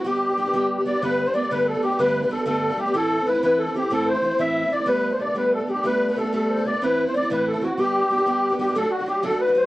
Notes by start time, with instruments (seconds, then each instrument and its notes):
0.04 steel-string acoustic guitar G3 B3 D4 G4, accordion G4
0.29 steel-string acoustic guitar B3 D4 G4
0.37 steel-string acoustic guitar G3 B3 D4 G4
0.45 steel-string acoustic guitar B3 D4 G4
0.54 steel-string acoustic guitar G3 B3 D4 G4
0.78 steel-string acoustic guitar B3 D4 G4
0.86 steel-string acoustic guitar G3 B3 D4 G4, accordion D5, shakuhachi D5
0.94 steel-string acoustic guitar B3 D4 G4
1.02 steel-string acoustic guitar G2 D3 G3 A3 B3 D4, shakuhachi B4, accordion B4
1.26 steel-string acoustic guitar G3 A3 B3 D4, accordion C5, shakuhachi C5
1.34 steel-string acoustic guitar G3 A3 B3 D4, shakuhachi D5, accordion D5
1.42 steel-string acoustic guitar G3 A3 B3 D4
1.50 steel-string acoustic guitar G2 D3 G3 A3 B3 D4, shakuhachi B4, accordion B4
1.66 shakuhachi A4, accordion A4
1.74 steel-string acoustic guitar G3 A3 B3 D4
1.82 steel-string acoustic guitar G3 A3 B3 D4, accordion G4, shakuhachi G4
1.90 steel-string acoustic guitar G3 A3 B3 D4
1.99 steel-string acoustic guitar G2 D3 G3 A3 B3 D4, accordion B4, shakuhachi B4
2.22 steel-string acoustic guitar G3 A3 B3 D4, shakuhachi B4, accordion B4
2.29 steel-string acoustic guitar G3 A3 B3 D4, shakuhachi A4, accordion A4
2.37 steel-string acoustic guitar G3 A3 B3 D4
2.45 steel-string acoustic guitar G2 D3 G3 A3 B3 D4, shakuhachi A4, accordion A4
2.69 steel-string acoustic guitar G3 A3 B3 D4
2.77 steel-string acoustic guitar G3 A3 B3 D4, shakuhachi G4, accordion G4
2.86 steel-string acoustic guitar G3 A3 B3 D4
2.93 steel-string acoustic guitar A2 E3 A3 C4 E4, accordion A4, shakuhachi A4
3.18 steel-string acoustic guitar A3 C4 E4
3.26 steel-string acoustic guitar E3 A3 C4 E4, accordion B4, shakuhachi B4
3.34 steel-string acoustic guitar A3 C4 E4
3.43 steel-string acoustic guitar A2 E3 A3 C4 E4, accordion B4, shakuhachi B4
3.59 accordion A4, shakuhachi B4
3.64 steel-string acoustic guitar A3 E4, shakuhachi A4
3.69 steel-string acoustic guitar C4
3.74 steel-string acoustic guitar E3 A3 C4 E4, accordion G4
3.82 steel-string acoustic guitar A3 C4 E4
3.90 steel-string acoustic guitar A2 E3 A3 C4 E4, shakuhachi A4, accordion A4
4.07 shakuhachi C5, accordion C5
4.14 steel-string acoustic guitar A3 C4 E4
4.22 steel-string acoustic guitar E3 A3 C4 E4
4.31 steel-string acoustic guitar A3 C4 E4
4.39 steel-string acoustic guitar A2 E3 A3 C4 E4, accordion E5, shakuhachi E5
4.63 steel-string acoustic guitar A3 C4 E4
4.70 steel-string acoustic guitar E3 A3 C4 E4, accordion D5, shakuhachi D5
4.79 steel-string acoustic guitar A3 C4 E4
4.86 steel-string acoustic guitar G3 A3 B3 D4, accordion B4, shakuhachi B4
5.10 steel-string acoustic guitar A3 B3 D4, accordion C5, shakuhachi C5
5.18 steel-string acoustic guitar G3 A3 B3 D4, accordion D5, shakuhachi D5
5.25 steel-string acoustic guitar A3 B3 D4
5.34 steel-string acoustic guitar G3 A3 B3 D4, accordion B4, shakuhachi B4
5.53 shakuhachi A4, accordion A4
5.59 steel-string acoustic guitar A3 B3 D4
5.67 steel-string acoustic guitar G3 A3 B3 D4, shakuhachi G4, accordion G4
5.76 steel-string acoustic guitar A3 B3 D4
5.83 steel-string acoustic guitar G3 A3 B3 D4, shakuhachi B4, accordion B4
6.08 steel-string acoustic guitar A3 B3 D4, accordion B4, shakuhachi B4
6.16 steel-string acoustic guitar G3 A3 B3 D4, accordion A4, shakuhachi A4
6.24 steel-string acoustic guitar A3 B3 D4
6.33 steel-string acoustic guitar G3 A3 B3 D4, accordion A4, shakuhachi A4
6.49 shakuhachi C5
6.57 steel-string acoustic guitar A3 B3 D4
6.65 steel-string acoustic guitar G3 A3 B3 D4, shakuhachi D5, accordion D5
6.73 steel-string acoustic guitar A3 B3 D4
6.81 steel-string acoustic guitar A2 E3 A3 C4 E4, shakuhachi B4, accordion B4
7.05 steel-string acoustic guitar A3 C4 E4, shakuhachi C5, accordion C5
7.13 steel-string acoustic guitar E3 A3 C4 E4, shakuhachi D5, accordion D5
7.22 steel-string acoustic guitar A3 C4 E4
7.29 steel-string acoustic guitar A2 E3 A3 C4 E4, shakuhachi B4, accordion B4
7.48 accordion A4
7.54 steel-string acoustic guitar A3 C4 E4
7.61 steel-string acoustic guitar E3 A3 C4 E4, accordion F#4
7.70 steel-string acoustic guitar A3 C4 E4
7.78 steel-string acoustic guitar G3 B3 D4 G4, shakuhachi G4, accordion G4
8.01 steel-string acoustic guitar B3 D4 G4
8.10 steel-string acoustic guitar G3 B3 D4 G4
8.18 steel-string acoustic guitar B3 D4 G4
8.26 steel-string acoustic guitar G3 B3 D4 G4
8.49 steel-string acoustic guitar B3 D4 G4
8.59 steel-string acoustic guitar G3 B3 D4 G4, shakuhachi G4, accordion G4
8.67 steel-string acoustic guitar B3 D4 G4
8.74 steel-string acoustic guitar D2 A2 F#3 A3 D4 F#4, shakuhachi A4, accordion A4
8.83 steel-string acoustic guitar F#3 A3 D4 F#4
8.90 shakuhachi F#4, accordion F#4
8.99 steel-string acoustic guitar F#3 A3 D4 F#4
9.06 steel-string acoustic guitar F#3 A3 D4 F#4, shakuhachi G4, accordion G4
9.22 steel-string acoustic guitar D2 A2 F#3 A3 D4 F#4, shakuhachi A4, accordion A4
9.30 steel-string acoustic guitar F#3 A3 D4 F#4
9.39 shakuhachi B4, accordion B4
9.46 steel-string acoustic guitar F#3 A3 D4 F#4
9.54 steel-string acoustic guitar F#3 A3 D4 F#4, accordion C5